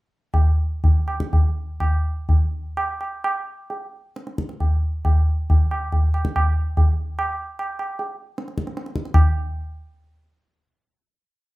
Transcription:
0.34 tabla tin medium
0.34 tabla ge medium
0.84 tabla tin medium
0.84 tabla ge medium
1.08 tabla na soft
1.20 tabla ke medium
1.33 tabla tin medium
1.33 tabla ge medium
1.80 tabla na medium
1.80 tabla ge medium
2.29 tabla tin medium
2.29 tabla ge medium
2.77 tabla na medium
3.01 tabla na medium
3.24 tabla na medium
3.70 tabla tin medium
4.16 tabla te medium
4.27 tabla te soft
4.38 tabla ke medium
4.49 tabla te medium
4.60 tabla tin medium
4.60 tabla ge medium
5.05 tabla tin medium
5.05 tabla ge medium
5.50 tabla tin medium
5.50 tabla ge medium
5.71 tabla na medium
5.92 tabla tin medium
5.92 tabla ge medium
6.14 tabla na medium
6.25 tabla ke medium
6.36 tabla na medium
6.36 tabla ge medium
6.77 tabla tin medium
6.77 tabla ge medium
7.19 tabla na medium
7.59 tabla na medium
7.79 tabla na medium
7.99 tabla tin medium
8.38 tabla te medium
8.48 tabla te medium
8.58 tabla ke medium
8.67 tabla te medium
8.77 tabla te medium
8.86 tabla te medium
8.96 tabla ke medium
9.05 tabla te medium
9.14 tabla na medium
9.14 tabla ge medium

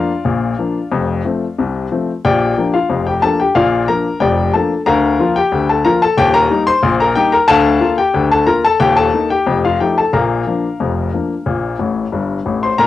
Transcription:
0.00 0.10 F3 soft
0.00 0.11 A#3 soft
0.00 0.11 D4 soft
0.00 1.55 F4 medium
0.00 1.54 D5 medium
0.00 1.54 F5 medium
0.25 0.53 A#1 medium
0.25 0.53 A#2 medium
0.59 0.77 F3 soft
0.59 0.77 A#3 soft
0.59 0.77 D4 soft
0.92 1.20 F1 medium
0.92 1.20 F2 medium
1.25 1.43 F3 soft
1.25 1.43 A3 soft
1.25 1.44 C4 soft
1.58 1.87 C2 medium
1.58 1.86 C3 medium
1.92 2.10 F3 soft
1.92 2.10 A3 soft
1.92 2.10 C4 soft
2.25 2.53 A#1 medium
2.25 2.53 A#2 medium
2.25 2.71 G4 medium
2.25 2.71 D5 medium
2.25 2.64 G5 medium
2.57 2.76 F3 soft
2.57 2.76 A#3 soft
2.57 2.76 D4 soft
2.74 3.05 F4 soft
2.74 3.05 F5 medium
2.90 3.18 F1 medium
2.90 3.18 F2 medium
3.07 3.23 G4 medium
3.07 3.23 G5 medium
3.22 3.41 F3 soft
3.22 3.41 A#3 soft
3.22 3.41 D4 soft
3.22 3.39 A4 medium
3.22 3.39 A5 medium
3.40 3.56 G4 medium
3.40 3.56 G5 medium
3.55 3.84 A#1 medium
3.55 3.84 A#2 medium
3.55 3.87 F4 medium
3.55 3.87 D5 medium
3.55 3.82 F5 medium
3.88 4.06 F3 soft
3.88 4.07 A#3 soft
3.88 4.07 D4 soft
3.88 4.20 A#4 medium
3.88 4.20 A#5 medium
4.20 4.49 F1 medium
4.20 4.49 F2 medium
4.20 4.52 G4 medium
4.20 4.52 D5 medium
4.20 4.52 G5 medium
4.53 4.72 F3 soft
4.53 4.72 A#3 soft
4.53 4.73 D4 soft
4.53 4.85 A4 medium
4.53 4.80 A5 medium
4.86 5.15 D2 medium
4.86 5.15 D3 medium
4.86 5.34 A#4 medium
4.86 5.33 F5 medium
4.86 5.26 A#5 medium
5.19 5.38 F3 medium
5.19 5.38 A#3 soft
5.19 5.38 F4 soft
5.36 5.68 G4 medium
5.36 5.68 G5 medium
5.52 5.81 D2 medium
5.52 5.81 D3 medium
5.69 5.85 A4 medium
5.69 5.86 A5 medium
5.85 6.03 F3 soft
5.85 6.03 A#3 soft
5.85 6.04 F4 medium
5.85 6.01 A#4 medium
5.85 6.02 A#5 medium
6.02 6.18 A4 medium
6.02 6.19 A5 medium
6.18 6.46 D#1 medium
6.18 6.46 D#2 medium
6.18 6.34 G4 medium
6.18 6.35 G5 loud
6.34 6.66 A#4 medium
6.34 6.61 A#5 loud
6.50 6.69 G3 medium
6.50 6.69 A#3 soft
6.50 6.69 D#4 medium
6.67 6.98 C5 medium
6.67 6.94 C6 loud
6.83 7.11 A#1 medium
6.83 7.11 A#2 medium
7.00 7.17 A#4 medium
7.00 7.17 A#5 medium
7.16 7.34 G3 soft
7.16 7.34 A#3 soft
7.16 7.35 D#4 medium
7.16 7.32 G4 medium
7.16 7.33 G5 loud
7.32 7.49 A#4 medium
7.32 7.49 A#5 medium
7.48 7.77 D2 medium
7.48 7.77 D3 medium
7.48 7.95 A4 medium
7.48 7.95 F5 medium
7.48 7.88 A5 loud
7.81 7.99 A#3 medium
7.81 8.00 F4 medium
7.98 8.30 G4 medium
7.98 8.25 G5 medium
8.14 8.43 D2 medium
8.14 8.43 D3 medium
8.31 8.48 A4 medium
8.31 8.48 A5 medium
8.47 8.65 A#3 soft
8.47 8.65 F4 soft
8.47 8.63 A#4 medium
8.47 8.64 A#5 medium
8.65 8.81 A4 medium
8.65 8.81 A5 medium
8.80 9.09 D#1 medium
8.80 9.09 D#2 medium
8.80 8.97 G4 medium
8.80 8.97 G5 loud
8.96 9.28 A4 medium
8.96 9.28 A5 loud
9.14 9.32 A#3 soft
9.14 9.32 D#4 soft
9.30 9.62 G4 medium
9.30 9.57 G5 medium
9.47 9.75 F1 medium
9.47 9.75 F2 medium
9.65 9.80 F4 medium
9.65 9.81 F5 medium
9.80 9.99 F3 soft
9.80 9.99 A3 soft
9.80 10.00 D#4 soft
9.80 9.96 G4 medium
9.80 9.97 G5 medium
9.98 10.14 A4 medium
9.98 10.14 A5 medium
10.13 10.42 A#1 medium
10.13 10.42 A#2 medium
10.13 12.09 A#4 medium
10.13 12.09 F5 medium
10.13 12.08 A#5 medium
10.47 10.65 F3 soft
10.47 10.65 A#3 soft
10.47 10.66 D4 soft
10.80 11.08 F1 medium
10.80 11.08 F2 medium
11.14 11.32 F3 soft
11.14 11.32 A#3 soft
11.14 11.32 D4 soft
11.46 11.74 A#1 medium
11.46 11.74 A#2 medium
11.79 12.04 A1 medium
11.79 12.04 A2 medium
12.12 12.37 G1 medium
12.12 12.37 G2 medium
12.46 12.71 A1 medium
12.46 12.71 A2 soft
12.63 12.79 C5 medium
12.63 12.79 C6 medium
12.78 12.87 A#2 medium
12.78 12.87 D4 medium
12.78 12.87 A#4 medium
12.78 12.87 A#5 loud

